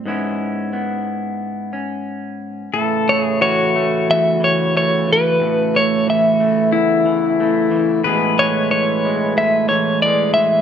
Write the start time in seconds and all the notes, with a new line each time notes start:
0.06 G#2 B3 C#4 E4
0.73 B3
1.73 C#4
2.73 A2 C#3 E3 A3 E4 A4
3.08 A3 C#5
3.23 G#4
3.41 E3 F#4 C#5
3.76 A3
4.09 E2 E5
4.40 E3 C#5
4.76 A3 C#5
5.07 E3
5.13 B4
5.40 A2
5.74 A3 C#5
6.07 E3 E5
6.40 A3
6.71 E2 E4
7.06 E3
7.40 A3
7.71 E3
8.04 A2 B2 E3 G#3 B3 G#4 B4
8.38 G#3 C#5
8.71 E3 C#5
9.05 G#3
9.37 A2 E5
9.69 E3 C#5
10.02 G#3 D5
10.34 E3 E5